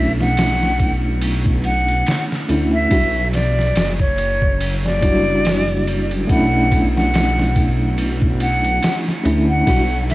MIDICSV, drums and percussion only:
0, 0, Header, 1, 2, 480
1, 0, Start_track
1, 0, Key_signature, 2, "minor"
1, 0, Tempo, 845070
1, 1653, Time_signature, 4, 2, 24, 8
1, 5762, End_track
2, 0, Start_track
2, 0, Title_t, "Drums"
2, 116, Note_on_c, 9, 38, 44
2, 173, Note_off_c, 9, 38, 0
2, 210, Note_on_c, 9, 51, 80
2, 220, Note_on_c, 9, 38, 104
2, 267, Note_off_c, 9, 51, 0
2, 277, Note_off_c, 9, 38, 0
2, 356, Note_on_c, 9, 38, 46
2, 413, Note_off_c, 9, 38, 0
2, 451, Note_on_c, 9, 51, 66
2, 453, Note_on_c, 9, 36, 88
2, 508, Note_off_c, 9, 51, 0
2, 509, Note_off_c, 9, 36, 0
2, 690, Note_on_c, 9, 51, 87
2, 747, Note_off_c, 9, 51, 0
2, 828, Note_on_c, 9, 36, 90
2, 885, Note_off_c, 9, 36, 0
2, 931, Note_on_c, 9, 51, 64
2, 988, Note_off_c, 9, 51, 0
2, 1069, Note_on_c, 9, 51, 41
2, 1126, Note_off_c, 9, 51, 0
2, 1173, Note_on_c, 9, 51, 76
2, 1182, Note_on_c, 9, 38, 98
2, 1229, Note_off_c, 9, 51, 0
2, 1239, Note_off_c, 9, 38, 0
2, 1319, Note_on_c, 9, 38, 45
2, 1375, Note_off_c, 9, 38, 0
2, 1414, Note_on_c, 9, 51, 66
2, 1471, Note_off_c, 9, 51, 0
2, 1651, Note_on_c, 9, 51, 77
2, 1653, Note_on_c, 9, 36, 104
2, 1708, Note_off_c, 9, 51, 0
2, 1710, Note_off_c, 9, 36, 0
2, 1893, Note_on_c, 9, 51, 65
2, 1903, Note_on_c, 9, 38, 48
2, 1950, Note_off_c, 9, 51, 0
2, 1960, Note_off_c, 9, 38, 0
2, 2038, Note_on_c, 9, 38, 35
2, 2095, Note_off_c, 9, 38, 0
2, 2133, Note_on_c, 9, 51, 78
2, 2142, Note_on_c, 9, 38, 110
2, 2189, Note_off_c, 9, 51, 0
2, 2199, Note_off_c, 9, 38, 0
2, 2269, Note_on_c, 9, 36, 80
2, 2326, Note_off_c, 9, 36, 0
2, 2374, Note_on_c, 9, 51, 62
2, 2431, Note_off_c, 9, 51, 0
2, 2510, Note_on_c, 9, 36, 86
2, 2567, Note_off_c, 9, 36, 0
2, 2615, Note_on_c, 9, 51, 82
2, 2672, Note_off_c, 9, 51, 0
2, 2759, Note_on_c, 9, 38, 45
2, 2816, Note_off_c, 9, 38, 0
2, 2855, Note_on_c, 9, 36, 80
2, 2856, Note_on_c, 9, 51, 62
2, 2911, Note_off_c, 9, 36, 0
2, 2913, Note_off_c, 9, 51, 0
2, 3095, Note_on_c, 9, 46, 71
2, 3105, Note_on_c, 9, 38, 105
2, 3152, Note_off_c, 9, 46, 0
2, 3161, Note_off_c, 9, 38, 0
2, 3336, Note_on_c, 9, 51, 69
2, 3392, Note_off_c, 9, 51, 0
2, 3470, Note_on_c, 9, 51, 42
2, 3527, Note_off_c, 9, 51, 0
2, 3574, Note_on_c, 9, 51, 76
2, 3575, Note_on_c, 9, 36, 99
2, 3631, Note_off_c, 9, 51, 0
2, 3632, Note_off_c, 9, 36, 0
2, 3815, Note_on_c, 9, 36, 94
2, 3816, Note_on_c, 9, 51, 62
2, 3871, Note_off_c, 9, 36, 0
2, 3873, Note_off_c, 9, 51, 0
2, 3961, Note_on_c, 9, 38, 47
2, 4018, Note_off_c, 9, 38, 0
2, 4055, Note_on_c, 9, 51, 81
2, 4064, Note_on_c, 9, 38, 111
2, 4111, Note_off_c, 9, 51, 0
2, 4121, Note_off_c, 9, 38, 0
2, 4199, Note_on_c, 9, 38, 47
2, 4256, Note_off_c, 9, 38, 0
2, 4293, Note_on_c, 9, 51, 62
2, 4294, Note_on_c, 9, 36, 91
2, 4350, Note_off_c, 9, 36, 0
2, 4350, Note_off_c, 9, 51, 0
2, 4531, Note_on_c, 9, 51, 84
2, 4588, Note_off_c, 9, 51, 0
2, 4668, Note_on_c, 9, 36, 92
2, 4725, Note_off_c, 9, 36, 0
2, 4773, Note_on_c, 9, 51, 63
2, 4829, Note_off_c, 9, 51, 0
2, 4910, Note_on_c, 9, 51, 42
2, 4966, Note_off_c, 9, 51, 0
2, 5013, Note_on_c, 9, 51, 82
2, 5022, Note_on_c, 9, 38, 106
2, 5069, Note_off_c, 9, 51, 0
2, 5079, Note_off_c, 9, 38, 0
2, 5158, Note_on_c, 9, 38, 46
2, 5215, Note_off_c, 9, 38, 0
2, 5256, Note_on_c, 9, 51, 61
2, 5312, Note_off_c, 9, 51, 0
2, 5492, Note_on_c, 9, 36, 101
2, 5492, Note_on_c, 9, 51, 80
2, 5549, Note_off_c, 9, 36, 0
2, 5549, Note_off_c, 9, 51, 0
2, 5736, Note_on_c, 9, 51, 67
2, 5745, Note_on_c, 9, 38, 45
2, 5762, Note_off_c, 9, 38, 0
2, 5762, Note_off_c, 9, 51, 0
2, 5762, End_track
0, 0, End_of_file